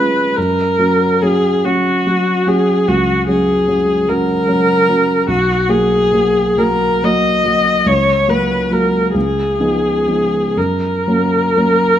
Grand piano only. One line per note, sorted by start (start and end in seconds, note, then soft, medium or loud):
0.00 0.40 G#3 soft
0.00 0.39 C#4 soft
0.00 0.39 F4 soft
0.38 0.78 F#2 soft
0.79 1.18 F#3 soft
0.79 1.18 C#4 soft
0.79 1.18 F#4 soft
1.22 1.61 F#3 soft
1.22 1.62 C#4 soft
1.22 1.62 F#4 soft
1.65 2.03 F#3 soft
1.65 2.03 C#4 soft
1.65 2.03 F#4 soft
2.06 2.44 F#3 soft
2.06 2.44 C#4 soft
2.06 2.44 F#4 soft
2.47 2.84 F#3 soft
2.47 2.84 C#4 soft
2.47 2.84 F#4 soft
2.88 3.27 C#2 soft
3.28 3.65 F#3 soft
3.28 3.65 C#4 soft
3.28 3.65 F#4 soft
3.68 4.05 F#3 soft
3.68 4.05 C#4 soft
3.68 4.05 F#4 soft
4.08 4.45 F#3 soft
4.08 4.45 C#4 soft
4.08 4.46 F#4 soft
4.47 4.84 F#3 soft
4.47 4.85 C#4 soft
4.47 4.85 F#4 soft
4.89 5.25 F#3 soft
4.89 5.25 C#4 soft
4.89 5.25 F#4 soft
5.28 5.67 B1 soft
5.69 6.08 F#3 soft
5.69 6.08 A#3 soft
5.69 6.08 F#4 soft
6.13 6.55 F#3 soft
6.13 6.55 A#3 soft
6.13 6.55 F#4 soft
6.58 7.00 F#3 soft
6.58 7.00 A#3 soft
6.58 7.00 F#4 soft
7.03 7.42 F#3 soft
7.03 7.42 A#3 soft
7.03 7.42 F#4 soft
7.44 7.82 F#3 soft
7.44 7.82 A#3 soft
7.44 7.82 F#4 soft
7.86 8.27 C#2 soft
8.28 8.67 F#3 soft
8.28 8.67 A#3 soft
8.28 8.68 F#4 soft
8.71 9.11 F#3 soft
8.71 9.11 A#3 soft
8.71 9.11 F#4 soft
9.14 9.58 C#2 soft
9.60 10.03 F3 soft
9.60 10.03 B3 soft
9.60 10.03 D#4 soft
10.07 10.52 F3 soft
10.07 10.53 B3 soft
10.07 10.53 D#4 soft
10.57 11.05 F#2 soft
11.07 11.53 F#3 soft
11.07 11.53 A#3 soft
11.07 11.53 C#4 soft
11.57 11.99 F#3 soft
11.57 11.99 A#3 soft
11.57 11.99 C#4 soft